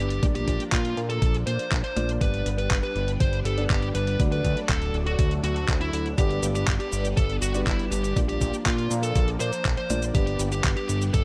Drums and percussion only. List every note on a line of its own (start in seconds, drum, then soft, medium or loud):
0.10 closed hi-hat soft
0.23 kick loud
0.23 closed hi-hat medium
0.35 closed hi-hat soft
0.48 kick medium
0.48 closed hi-hat medium
0.60 closed hi-hat soft
0.72 kick loud
0.72 clap loud
0.72 closed hi-hat medium
0.85 closed hi-hat soft
0.97 closed hi-hat soft
1.10 closed hi-hat soft
1.22 kick loud
1.22 closed hi-hat medium
1.35 closed hi-hat soft
1.47 closed hi-hat medium
1.59 closed hi-hat soft
1.72 kick loud
1.72 clap loud
1.72 closed hi-hat medium
1.84 closed hi-hat soft
1.97 closed hi-hat medium
2.09 closed hi-hat soft
2.21 kick loud
2.21 closed hi-hat medium
2.34 closed hi-hat soft
2.46 closed hi-hat medium
2.58 closed hi-hat soft
2.71 kick loud
2.71 clap loud
2.71 closed hi-hat medium
2.83 closed hi-hat soft
2.96 closed hi-hat soft
3.08 closed hi-hat soft
3.20 kick loud
3.20 closed hi-hat medium
3.33 closed hi-hat soft
3.45 closed hi-hat medium
3.58 closed hi-hat soft
3.70 kick loud
3.70 clap loud
3.70 closed hi-hat medium
3.82 closed hi-hat soft
3.95 closed hi-hat medium
4.07 closed hi-hat soft
4.20 kick loud
4.20 closed hi-hat medium
4.32 closed hi-hat soft
4.44 kick medium
4.44 closed hi-hat medium
4.57 closed hi-hat soft
4.69 kick loud
4.69 clap loud
4.69 closed hi-hat medium
4.82 closed hi-hat soft
4.94 closed hi-hat soft
5.07 closed hi-hat soft
5.19 kick loud
5.19 closed hi-hat medium
5.31 closed hi-hat soft
5.44 closed hi-hat medium
5.56 closed hi-hat soft
5.68 kick loud
5.68 clap loud
5.68 closed hi-hat medium
5.81 closed hi-hat soft
5.93 closed hi-hat medium
6.06 closed hi-hat soft
6.18 kick loud
6.18 closed hi-hat medium
6.18 cabasa soft
6.31 closed hi-hat soft
6.43 closed hi-hat medium
6.43 cabasa medium
6.55 closed hi-hat soft
6.55 cabasa soft
6.68 kick loud
6.68 clap loud
6.68 closed hi-hat medium
6.68 cabasa soft
6.80 closed hi-hat soft
6.92 closed hi-hat soft
6.92 cabasa medium
7.05 closed hi-hat soft
7.05 cabasa soft
7.17 kick loud
7.17 closed hi-hat medium
7.17 cabasa soft
7.30 closed hi-hat soft
7.42 closed hi-hat medium
7.42 cabasa medium
7.54 closed hi-hat soft
7.54 cabasa soft
7.67 kick loud
7.67 clap loud
7.67 closed hi-hat medium
7.67 cabasa soft
7.79 closed hi-hat soft
7.92 closed hi-hat medium
7.92 cabasa medium
8.04 closed hi-hat soft
8.04 cabasa soft
8.16 kick loud
8.16 closed hi-hat medium
8.16 cabasa soft
8.29 closed hi-hat soft
8.41 kick medium
8.41 closed hi-hat medium
8.41 cabasa medium
8.54 closed hi-hat soft
8.54 cabasa soft
8.66 kick loud
8.66 clap loud
8.66 closed hi-hat medium
8.66 cabasa soft
8.78 closed hi-hat soft
8.91 closed hi-hat soft
8.91 cabasa medium
9.03 closed hi-hat soft
9.03 cabasa soft
9.16 kick loud
9.16 closed hi-hat medium
9.16 cabasa soft
9.28 closed hi-hat soft
9.40 closed hi-hat medium
9.40 cabasa medium
9.53 closed hi-hat soft
9.53 cabasa soft
9.65 kick loud
9.65 clap loud
9.65 closed hi-hat medium
9.65 cabasa soft
9.77 closed hi-hat soft
9.90 closed hi-hat medium
9.90 cabasa medium
10.02 closed hi-hat soft
10.02 cabasa soft
10.15 kick loud
10.15 closed hi-hat medium
10.15 cabasa soft
10.27 closed hi-hat soft
10.39 closed hi-hat medium
10.39 cabasa medium
10.52 closed hi-hat soft
10.52 cabasa soft
10.64 kick loud
10.64 clap loud
10.64 closed hi-hat loud
10.64 cabasa soft
10.77 closed hi-hat soft
10.89 closed hi-hat soft
10.89 cabasa medium
11.02 closed hi-hat soft
11.02 cabasa soft
11.14 kick loud
11.14 closed hi-hat loud
11.14 cabasa soft